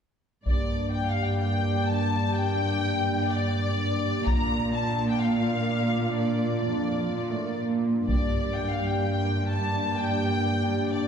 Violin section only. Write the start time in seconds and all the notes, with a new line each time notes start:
0.46 D5
0.94 G5
1.10 F5
1.25 G5
1.41 G5
1.88 A5
2.36 G5
3.31 D5
4.26 A#5
4.74 A5
5.09 G5
5.22 F5
6.17 D5
8.07 D5
8.55 G5
8.70 F5
8.86 G5
9.03 G5
9.50 A5
9.98 G5
10.93 D5